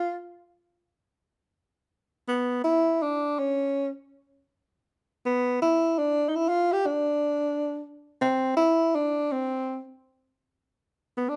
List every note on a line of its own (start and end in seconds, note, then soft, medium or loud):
0.00 0.14 F4 loud
2.28 2.62 B3 medium
2.64 3.04 E4 medium
3.02 3.40 D4 medium
3.39 3.88 C#4 medium
5.26 5.59 B3 medium
5.62 6.00 E4 medium
5.99 6.30 D4 medium
6.29 6.37 D#4 medium
6.36 6.50 E4 medium
6.48 6.74 F4 medium
6.72 6.88 G4 medium
6.86 7.83 D4 medium
8.22 8.55 C4 medium
8.57 8.96 E4 medium
8.95 9.33 D4 medium
9.32 9.81 C4 medium
11.17 11.30 B3 medium
11.29 11.36 D4 medium